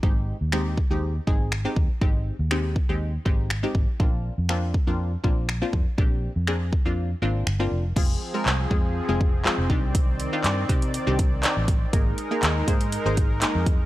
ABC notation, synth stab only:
X:1
M:4/4
L:1/16
Q:1/4=121
K:Ablyd
V:1 name="Synth stab"
[A,CEG]3 z [A,CEG]2 z [A,CEG]2 z [A,CEA]2 z [A,CEG]2 z | [A,CEG]3 z [A,CEG]2 z [A,CEG]2 z [A,CEG]2 z [A,CEG]2 z | [B,CDF]3 z [B,CDF]2 z [B,CDF]2 z [B,CDF]2 z [B,CDF]2 z | [B,CDG]3 z [B,CDA]2 z [B,CDF]2 z [B,CDF]2 z [B,CDF]2 z |
[A,CFA]2 z [A,CFB]2 z [A,CFA]2 z [A,CFA]2 z [A,CFA]2 [CDEG]2- | [CDEG]2 z [CDEF]2 z [CDEG]2 z [CDEG]2 z [CDEG]3 z | [B,EAB]2 z [B,EAB]2 z [B,EAc]2 z [B,EAc]2 z [B,EAB]3 z |]